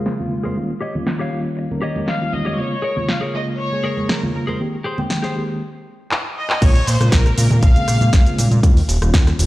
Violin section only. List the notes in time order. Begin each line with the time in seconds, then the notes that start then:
Already playing: F4
2.08 F5
2.33 D#5
2.59 C#5
3.09 F5
3.34 D#5
3.60 C#5
4.10 A#4
4.35 A#4
6.37 D#5
6.62 C#5
6.88 C5
7.12 A#4
7.62 F5